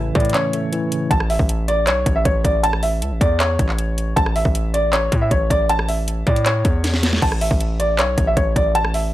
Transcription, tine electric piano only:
0.00 1.12 A2 medium
0.00 0.92 C#3 medium
0.00 0.73 E3 medium
0.00 0.16 A3 loud
0.00 0.34 C#4 medium
0.16 0.52 A3 medium
0.34 1.11 C#4 medium
0.53 1.11 A3 medium
0.73 1.11 E3 loud
0.92 1.11 C#3 medium

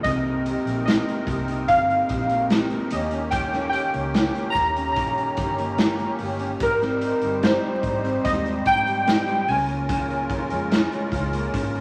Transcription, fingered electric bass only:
0.04 0.54 C2 loud
0.66 0.99 A#1 medium
1.27 1.70 C2 loud
1.69 2.02 G1 loud
2.10 2.76 A#1 medium
2.92 3.74 D#2 loud
3.94 4.27 C#2 medium
4.55 4.97 D#2 loud
4.97 5.30 A#1 medium
5.38 6.03 G1 medium
6.20 6.53 G1 medium
6.61 7.10 G#1 loud
7.22 7.55 G1 loud
7.83 8.17 G#1 loud
8.25 8.58 D#2 loud
8.66 9.50 G#2 medium
9.48 10.31 C#2 loud
10.50 10.84 F2 medium
11.12 11.45 C#2 loud
11.54 11.81 G#1 loud

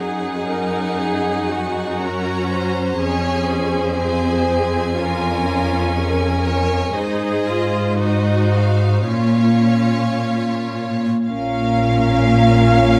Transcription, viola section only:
0.00 1.99 D#4 soft
0.00 0.49 G#4 soft
0.49 1.00 A#4 soft
1.00 1.50 G#4 soft
1.51 3.00 F#4 soft
1.99 2.98 C#4 soft
2.99 3.97 C#4 soft
2.99 3.97 G#4 soft
3.98 4.47 C4 soft
3.98 4.96 G#4 soft
4.48 4.97 C4 soft
4.96 6.97 C#4 soft
4.96 5.45 F4 soft
5.46 5.96 F4 soft
5.95 6.96 A#4 soft
6.96 7.48 D#4 soft
6.96 8.01 G#4 soft
7.48 8.01 F4 soft
8.00 9.07 D#4 soft
8.00 9.10 F#4 soft
9.09 11.08 C#4 soft
9.09 11.04 F4 soft
11.28 12.99 C#4 soft

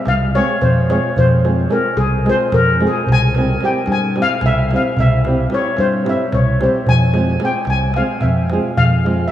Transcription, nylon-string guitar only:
0.34 0.54 G#3 medium
0.34 0.54 C4 medium
0.34 0.54 F4 medium
0.34 0.54 G#4 medium
0.90 1.09 G#3 medium
0.90 1.09 C4 medium
0.90 1.09 F4 medium
0.90 1.10 G#4 medium
1.44 1.63 G#3 medium
1.44 1.63 C4 medium
1.44 1.63 F4 medium
1.44 1.64 G#4 medium
1.70 1.89 G#3 medium
1.70 1.89 C4 medium
1.70 1.89 F4 medium
1.70 1.89 G#4 medium
2.25 2.44 G#3 medium
2.25 2.45 C4 medium
2.25 2.45 F4 medium
2.25 2.45 G#4 medium
2.80 2.99 G#3 medium
2.80 3.00 C4 medium
2.80 3.00 F4 medium
2.80 3.00 G#4 medium
3.35 3.54 G3 medium
3.35 3.54 C4 medium
3.35 3.54 E4 soft
3.35 3.55 G4 medium
3.62 3.80 G3 medium
3.62 3.80 C4 medium
3.62 3.80 E4 medium
3.62 3.81 G4 medium
4.16 4.34 G3 medium
4.16 4.35 C4 medium
4.16 4.35 E4 medium
4.16 4.35 G4 medium
4.72 4.90 G3 medium
4.72 4.91 C4 medium
4.72 4.91 E4 medium
4.72 4.91 G4 medium
5.26 5.44 G3 medium
5.26 5.44 C4 medium
5.26 5.45 E4 medium
5.26 5.45 G4 medium
5.51 5.69 G3 medium
5.51 5.69 C4 medium
5.51 5.70 E4 medium
5.51 5.70 G4 medium
6.05 6.24 G3 medium
6.05 6.24 C4 medium
6.05 6.24 E4 medium
6.05 6.24 G4 medium
6.60 6.79 G3 medium
6.60 6.79 C4 medium
6.60 6.79 E4 medium
6.60 6.80 G4 medium
7.13 7.32 G#3 medium
7.13 7.33 C4 medium
7.13 7.33 F4 soft
7.13 7.33 G#4 medium
7.39 7.58 G#3 medium
7.39 7.59 C4 medium
7.39 7.58 F4 medium
7.39 7.59 G#4 medium
7.95 8.14 G#3 medium
7.95 8.14 C4 medium
7.95 8.15 F4 medium
7.95 8.15 G#4 medium
8.52 8.70 G#3 medium
8.52 8.70 C4 medium
8.52 8.70 F4 medium
8.52 8.70 G#4 medium
9.05 9.23 G#3 medium
9.05 9.24 C4 medium
9.05 9.24 F4 medium
9.05 9.24 G#4 medium

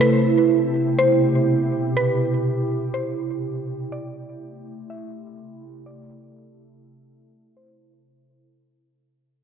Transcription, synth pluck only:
0.01 0.47 B4 loud
0.99 1.92 C5 medium
1.97 2.42 B4 loud
2.94 3.88 C5 medium
3.92 4.38 D5 loud
4.90 5.83 E5 medium
5.86 6.32 D5 loud
7.57 7.80 C5 medium

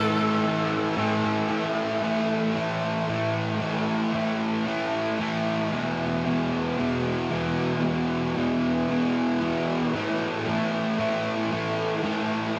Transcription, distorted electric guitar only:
0.00 0.45 A2 medium
0.00 0.19 E3 medium
0.00 0.17 A3 medium
0.18 0.96 E3 medium
0.18 0.97 A3 medium
0.96 1.47 A2 loud
0.96 1.24 E3 loud
0.96 1.22 A3 loud
1.23 1.49 E3 medium
1.23 1.48 A3 medium
1.48 2.02 A2 medium
1.48 2.03 E3 medium
1.48 2.04 A3 loud
2.02 2.54 A2 medium
2.02 2.56 E3 medium
2.02 2.56 A3 medium
2.55 3.07 A2 medium
2.55 3.09 E3 loud
2.55 3.09 A3 loud
3.08 3.59 A2 medium
3.08 3.61 E3 medium
3.08 3.61 A3 medium
3.60 4.12 A2 medium
3.60 4.14 E3 medium
3.60 4.14 A3 loud
4.13 4.65 A2 medium
4.13 4.67 E3 medium
4.13 4.67 A3 medium
4.66 5.18 A2 medium
4.66 5.20 E3 loud
4.66 5.20 A3 medium
5.19 5.70 A2 medium
5.19 5.74 E3 medium
5.19 5.72 A3 medium
5.72 6.24 E2 medium
5.72 6.25 B2 medium
5.72 6.27 E3 loud
6.25 6.77 E2 medium
6.25 6.78 B2 medium
6.25 6.79 E3 medium
6.78 7.29 E2 loud
6.78 7.30 B2 loud
6.78 7.32 E3 loud
7.31 7.82 E2 medium
7.31 7.83 B2 medium
7.31 7.84 E3 medium
7.83 8.35 E2 medium
7.83 8.36 B2 medium
7.83 8.37 E3 loud
8.36 8.87 E2 medium
8.36 8.89 B2 medium
8.36 8.90 E3 medium
8.89 9.40 E2 medium
8.89 9.40 B2 loud
8.89 9.42 E3 loud
9.41 9.92 E2 medium
9.41 9.92 B2 medium
9.41 9.94 E3 medium
9.93 10.46 A2 medium
9.93 10.47 E3 medium
9.93 10.48 A3 medium
10.46 10.97 A2 medium
10.46 10.98 E3 medium
10.46 11.00 A3 medium
10.98 11.50 A2 medium
10.98 11.51 E3 loud
10.98 11.53 A3 loud
11.51 12.02 A2 medium
11.51 12.04 E3 medium
11.51 12.05 A3 medium
12.04 12.56 A2 loud
12.04 12.57 E3 medium
12.04 12.59 A3 loud

